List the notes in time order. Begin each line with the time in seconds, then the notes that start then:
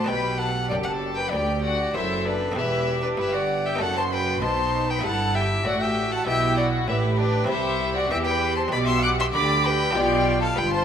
0.04 B3 D4 G4 G5
0.09 B1 B2 G4 B4 B5
0.38 A4 F#5 A5
0.69 F#1 F#2 G4 D5 G5
0.83 A4 F#5
0.88 A5
1.15 B4 G5
1.20 B5
1.30 D2 G4 D5 G5
1.62 F#4 D5 F#5
1.94 F#1 F#2 E4 A4 C5 E5
2.26 D4 B4 D5
2.52 B3 E4 G4
2.56 E1 E2 E4 G4 B4 E5
3.02 D4 B4 D5
3.17 G1 G2 E4 B4 E5
3.33 F#4 D5 F#5
3.65 G4 E5 G5
3.75 B3 D#4 A4
3.80 F#1 F#2 F#4 A4 F#5 A5
3.96 C5 A5 C6
4.12 B4 G5 B5
4.42 B1 B2 D#4 C5 A5 C6
4.88 B4 G5 B5
4.99 B3 E4 G4
5.03 G1 G2 E4 A4 F#5 A5
5.35 G4 E5 G5
5.64 A1 A2 F#4 D5 F#5
5.81 G4 E5 G5
6.11 A4 F#5 A5
6.26 B1 B2 E4 G4 E5 G5
6.57 F#4 D5 F#5
6.87 A1 A2 E4 G4 B4 E5
7.18 D4 B4 D5
7.44 C4 E4 G4
7.49 C2 C3 E4 G4 C5 E5
7.96 F#4 D5 F#5
8.10 E2 E3 G4 E5 G5
8.25 B4 G5 B5
8.56 C5 A5 C6
8.68 D4 G4 D5 B5
8.72 B1 B2 G4 D6
8.87 E5 C6 E6
9.03 F#5 D6 F#6
9.19 E5 C6 E6
9.34 D2 D3 G4 D5 B5 D6
9.65 B4 G5 B5
9.91 D4 F4 G4
9.95 B1 B2 F4 G4 D5 G5
10.42 A4 F5 A5
10.56 G1 G2 F4 B4 G5 B5
10.71 C5 A5 C6